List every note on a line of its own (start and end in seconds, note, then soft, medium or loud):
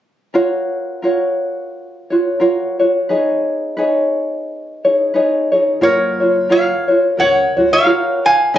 0.34 1.02 F4 medium
0.34 1.03 F#4 medium
0.34 1.01 A#4 medium
0.34 1.04 C#5 medium
1.02 2.10 F4 medium
1.02 2.11 F#4 medium
1.02 2.10 A#4 soft
1.02 2.10 C#5 medium
2.10 2.39 F4 soft
2.10 2.40 F#4 soft
2.10 2.39 C#5 soft
2.40 2.79 F4 medium
2.40 2.79 F#4 medium
2.40 2.78 A#4 medium
2.40 2.78 C#5 medium
2.79 3.09 F4 soft
2.79 3.09 F#4 soft
2.79 3.08 C#5 soft
3.09 3.77 D#4 medium
3.09 3.77 G#4 medium
3.09 3.76 B4 medium
3.09 3.79 C#5 medium
3.77 4.84 D#4 medium
3.77 4.84 G#4 medium
3.77 4.84 B4 medium
3.77 4.84 C#5 medium
4.85 5.13 D#4 soft
4.85 5.14 G#4 medium
4.85 5.14 C#5 medium
5.14 5.53 D#4 medium
5.14 5.52 G#4 medium
5.14 5.52 B4 medium
5.14 5.51 C#5 medium
5.52 5.81 D#4 soft
5.52 5.81 G#4 medium
5.52 5.81 C#5 soft
5.81 6.70 F#1 medium
5.81 6.20 F4 medium
5.81 6.20 F#4 medium
5.81 6.20 A#4 medium
5.81 6.47 A#4 medium
5.81 6.19 C#5 medium
5.81 6.51 C#5 medium
6.20 6.49 F4 soft
6.20 6.49 F#4 soft
6.20 6.50 C#5 soft
6.49 6.89 F4 medium
6.49 6.88 F#4 medium
6.49 6.88 A#4 medium
6.49 6.87 C#5 medium
6.49 7.15 C#5 medium
6.49 7.15 F5 medium
6.88 7.18 F4 soft
6.88 7.17 F#4 soft
6.88 7.18 C#5 soft
7.17 7.44 C#2 medium
7.17 7.57 F#4 medium
7.17 7.56 A#4 medium
7.17 7.55 C#5 medium
7.17 7.69 C#5 medium
7.17 7.73 F#5 medium
7.57 7.76 C#2 medium
7.57 7.85 F4 soft
7.57 7.85 F#4 soft
7.57 7.86 C#5 soft
7.73 8.22 C#5 medium
7.73 8.25 F5 medium
7.86 8.54 F4 medium
7.86 8.54 F#4 medium
7.86 8.53 A#4 medium
7.86 8.55 C#5 medium
8.26 8.53 F5 medium
8.26 8.56 G#5 loud
8.54 8.58 B1 medium
8.54 8.58 D#4 medium
8.54 8.58 G#4 medium
8.54 8.58 B4 medium
8.54 8.58 C#5 medium